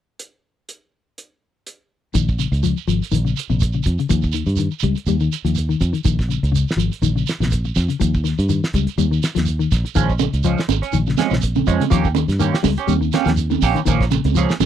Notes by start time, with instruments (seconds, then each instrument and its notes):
0.19 closed hi-hat
0.69 closed hi-hat
1.18 closed hi-hat
1.67 closed hi-hat
2.14 fingered electric bass A#1, clean electric guitar D#3, kick, closed hi-hat, shekere
2.28 kick, shekere
2.39 clean electric guitar C#3, closed hi-hat, shekere
2.52 fingered electric bass C#2, closed hi-hat, shekere
2.63 clean electric guitar F3, closed hi-hat, shekere
2.77 shekere
2.88 fingered electric bass G#1, clean electric guitar F3, closed hi-hat, shekere
3.01 muted fingered electric bass stroke, closed hi-hat, shekere
3.11 fingered electric bass A#1, clean electric guitar D#3, closed hi-hat, shekere
3.25 clean electric guitar C#3, shekere
3.36 closed hi-hat, shekere
3.50 fingered electric bass A#1, clean electric guitar C3, shekere
3.60 kick, closed hi-hat, shekere
3.73 clean electric guitar C#3, shekere
3.83 fingered electric bass F2, kick, closed hi-hat, shekere
3.98 clean electric guitar C#3, closed hi-hat, shekere
4.09 fingered electric bass D#2, clean electric guitar F3, kick, closed hi-hat, shekere
4.22 kick, shekere
4.32 clean electric guitar D#3, closed hi-hat, shekere
4.46 fingered electric bass G2, closed hi-hat, shekere
4.56 clean electric guitar D#3, closed hi-hat, shekere
4.71 shekere
4.80 fingered electric bass C#2, kick, closed hi-hat, shekere
4.84 clean electric guitar G3
4.95 muted fingered electric bass stroke, closed hi-hat, shekere
5.06 fingered electric bass D#2, clean electric guitar G3, closed hi-hat, shekere
5.20 clean electric guitar D#3, shekere
5.32 closed hi-hat, shekere
5.45 fingered electric bass D#2, clean electric guitar F3, closed hi-hat, shekere
5.55 closed hi-hat, shekere
5.69 clean electric guitar D#3, shekere
5.81 fingered electric bass F2, kick, closed hi-hat, shekere
5.93 clean electric guitar D#3, closed hi-hat, shekere
6.05 fingered electric bass A#1, clean electric guitar D#3, kick, closed hi-hat, shekere
6.19 kick, snare, shekere
6.29 clean electric guitar C#3, closed hi-hat, shekere
6.43 fingered electric bass C#2, closed hi-hat, shekere
6.52 clean electric guitar C#3, closed hi-hat, shekere
6.68 snare, shekere
6.77 fingered electric bass G#1, clean electric guitar F3, closed hi-hat, shekere
6.91 muted fingered electric bass stroke, closed hi-hat, shekere
7.02 fingered electric bass A#1, clean electric guitar D#3, closed hi-hat, shekere
7.16 clean electric guitar C#3, shekere
7.26 snare, closed hi-hat, shekere
7.40 fingered electric bass A#1, clean electric guitar C3, snare, shekere
7.51 kick, closed hi-hat, shekere
7.65 muted clean electric guitar stroke, shekere
7.75 fingered electric bass F2, kick, snare, closed hi-hat, shekere
7.89 clean electric guitar C#3, closed hi-hat, shekere
8.00 fingered electric bass D#2, clean electric guitar F3, kick, closed hi-hat, shekere
8.14 kick, shekere
8.24 clean electric guitar D#3, snare, closed hi-hat, shekere
8.38 fingered electric bass G2, closed hi-hat, shekere
8.49 clean electric guitar D#3, closed hi-hat, shekere
8.64 snare, shekere
8.73 fingered electric bass C#2, clean electric guitar G3, kick, closed hi-hat, shekere
8.87 muted fingered electric bass stroke, closed hi-hat, shekere
8.98 fingered electric bass D#2, clean electric guitar G3, closed hi-hat, shekere
9.11 clean electric guitar D#3, shekere
9.23 snare, closed hi-hat, shekere
9.35 fingered electric bass D#2, clean electric guitar F3, snare, closed hi-hat, shekere
9.46 closed hi-hat, shekere
9.59 clean electric guitar D#3, shekere
9.71 fingered electric bass A#1, kick, snare, closed hi-hat, shekere
9.85 muted clean electric guitar stroke, closed hi-hat, shekere
9.95 fingered electric bass A#1, clean electric guitar D#3 F3 G#3 C#4, kick, closed hi-hat, shekere
10.09 kick, shekere
10.19 clean electric guitar C#3, closed hi-hat, high conga, shekere
10.33 fingered electric bass C#2, closed hi-hat, shekere
10.44 clean electric guitar F3 G#3 C#4, closed hi-hat, shekere
10.58 snare, shekere
10.68 fingered electric bass G#1, muted clean electric guitar stroke, closed hi-hat, high conga, shekere
10.82 clean electric guitar C#4, muted clean electric guitar stroke, muted fingered electric bass stroke, closed hi-hat, shekere
10.93 fingered electric bass A#1, clean electric guitar D#3, closed hi-hat, shekere
11.06 clean electric guitar C#3, snare, shekere
11.17 clean electric guitar F3 G#3 C#4, snare, closed hi-hat, high conga, shekere
11.30 fingered electric bass A#1, clean electric guitar C3, snare, shekere
11.42 kick, closed hi-hat, shekere
11.55 clean electric guitar C#3, high conga, shekere
11.67 fingered electric bass F2, clean electric guitar F3 G#3 C#4, kick, closed hi-hat, shekere
11.80 clean electric guitar C#3, closed hi-hat, high conga, shekere
11.90 fingered electric bass D#2, clean electric guitar F3 A#3 C#4 G4, kick, closed hi-hat, shekere
12.04 kick, shekere
12.15 clean electric guitar D#3, closed hi-hat, high conga, shekere
12.28 fingered electric bass G2, snare, closed hi-hat, shekere
12.39 clean electric guitar D#3 A#3 C#4 G4, closed hi-hat, shekere
12.54 snare, shekere
12.63 fingered electric bass C#2, clean electric guitar G3, kick, open hi-hat, high conga, shekere
12.77 clean electric guitar C#4 G4, muted fingered electric bass stroke, closed hi-hat, shekere
12.87 fingered electric bass D#2, clean electric guitar G3, closed hi-hat, high conga, shekere
13.01 clean electric guitar D#3, shekere
13.12 clean electric guitar A#3 C#4 G4, snare, closed hi-hat, high conga, shekere
13.25 fingered electric bass D#2, clean electric guitar F3, snare, closed hi-hat, shekere
13.37 closed hi-hat, shekere
13.50 clean electric guitar D#3, high conga, shekere
13.62 fingered electric bass A#1, clean electric guitar A#3 C#4 G4, kick, open hi-hat, shekere
13.75 clean electric guitar D#3, closed hi-hat, shekere
13.85 fingered electric bass A#1, clean electric guitar D#3 F3 A#3 C#4, muted clean electric guitar stroke, kick, closed hi-hat, shekere
14.01 kick, snare, shekere
14.10 clean electric guitar C#3, closed hi-hat, high conga, shekere
14.24 fingered electric bass C#2, closed hi-hat, high conga, shekere
14.35 clean electric guitar F3 A#3 C#4 G#4, closed hi-hat, shekere
14.49 snare, shekere
14.60 fingered electric bass G#1, clean electric guitar F3, closed hi-hat, high conga, shekere